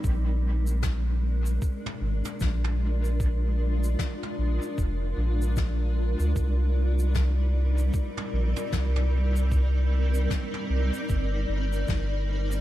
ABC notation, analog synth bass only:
X:1
M:4/4
L:1/16
Q:"Swing 16ths" 1/4=76
K:Bbmix
V:1 name="Analog synth bass" clef=bass
B,,,8 z2 A,,, z B,,,4- | B,,,4 z2 B,,, z F,,,2 B,,,4- B,,, D,, | C,,8 z2 B,,, z C,,4- | C,,4 z2 C,, z G,,,2 G,,,2 G,,,4 |]